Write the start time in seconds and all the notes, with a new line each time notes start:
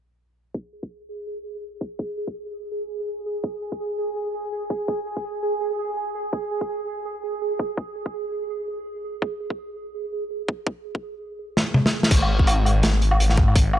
0.55 G#4, kick
0.83 kick
1.81 kick
1.99 kick
2.27 kick
3.44 kick
3.72 kick
4.70 kick
4.88 kick
5.17 kick
6.33 kick
6.61 kick
7.59 kick
7.77 kick
8.06 kick
9.22 kick
9.50 kick
10.48 kick
10.67 kick
10.95 kick
11.57 snare
11.74 mid tom
11.86 snare
12.03 snare
12.11 G#1, kick, closed hi-hat, crash
12.22 low woodblock
12.39 kick
12.47 closed hi-hat, low woodblock
12.65 closed hi-hat, low woodblock
12.83 snare, closed hi-hat, low woodblock
13.02 closed hi-hat
13.11 low woodblock
13.19 G#1, closed hi-hat
13.30 snare, low woodblock
13.37 kick
13.48 low woodblock
13.55 kick, closed hi-hat
13.73 low woodblock